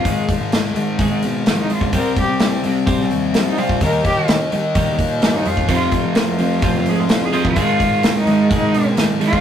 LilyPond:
<<
  \new Staff \with { instrumentName = "Cello" } { \time 4/4 \key aes \major \tempo 4 = 128 f'4 r2 f16 ees'16 f'8 | bes'8 g'8 r2 f16 ees'16 f'8 | bes'8 g'8 r2 bes16 ees'16 f'8 | f'8 r8 f'4. aes'16 f'8 aes'8 f'16~ |
f'4~ f'16 ees'8. ees'4 r8 f'8 | }
  \new Staff \with { instrumentName = "Clean electric guitar" } { \clef bass \time 4/4 \key aes \major <aes, ees aes>8 <aes, ees>8 <aes, ees>8 <aes, ees>8 <aes, ees aes>8 <aes, ees>8 <aes, ees>8 <aes, ees>8 | <c g c'>8 <c g>8 <c g>8 <c g>8 <c g c'>8 <c g>8 <c g>8 <c g c'>8 | <ees g bes>8 <ees g>8 <ees g>8 <ees g>8 <ees g bes>8 g8 <ees g>8 <ees g>8 | <f c' f'>8 <f c'>8 <f c'>8 <f c'>8 <f c' f'>8 <f c'>8 <f c'>8 <f c' f'>8 |
<aes, ees aes>8 <aes, ees>8 <aes, ees>8 <aes, ees>8 <aes, ees aes>8 aes,8 <aes, ees>8 <aes, ees>8 | }
  \new Staff \with { instrumentName = "Distorted electric guitar" } { \clef bass \time 4/4 \key aes \major <aes, ees aes>4. <aes, ees aes>2~ <aes, ees aes>8 | <c g c'>4. <c g c'>2~ <c g c'>8 | <ees bes ees'>4. <ees bes ees'>2~ <ees bes ees'>8 | <f, c f>4. <f, c f>2~ <f, c f>8 |
<aes, ees aes>4. <aes, ees aes>2~ <aes, ees aes>8 | }
  \new Staff \with { instrumentName = "Overdriven electric guitar" } { \clef bass \time 4/4 \key aes \major r1 | r1 | r1 | <f, c f>2.~ <f, c f>8 <f, c f>8 |
<aes, ees aes>2.~ <aes, ees aes>8 <aes, ees aes>8 | }
  \new Staff \with { instrumentName = "Picked electric bass" } { \clef bass \time 4/4 \key aes \major aes,8 r16 aes,8 r16 aes,8. aes,16 ces8 r8. des,16 | c,8 r16 c8 r16 c8. c,16 ees,8 r8. bes,,16 | ees,8 r16 ees8 r16 ees8. ees,16 bes,8 g,8 f,8 | f,8 r16 f8 r16 f8. f,16 aes,8 r8. ees,16 |
aes,8 r16 aes,8 r16 aes,8. aes,16 ces8 r8. des,16 | }
  \new DrumStaff \with { instrumentName = "Drums" } \drummode { \time 4/4 <hho bd>8 <hho bd>8 <hho sn>8 hho8 <hho bd>8 hho8 <hho sn>8 hho16 bd16 | <hho bd>8 <hho bd>8 <hho sn>16 sn16 hho8 <hho bd>8 hho8 <hho sn>8 hho16 bd16 | <hho bd>8 <hho bd>8 <hho sn>8 hho8 <hho bd>8 <hho bd>8 <hho sn>8 hho16 bd16 | <hho bd>8 <hho bd>8 <hho sn>8 hho8 <hho bd>8 hho8 <hho sn>8 hho16 bd16 |
<hho bd>8 <hho bd>8 <hho sn>8 hho8 <hho bd>8 hho8 <hho sn>8 hho16 bd16 | }
>>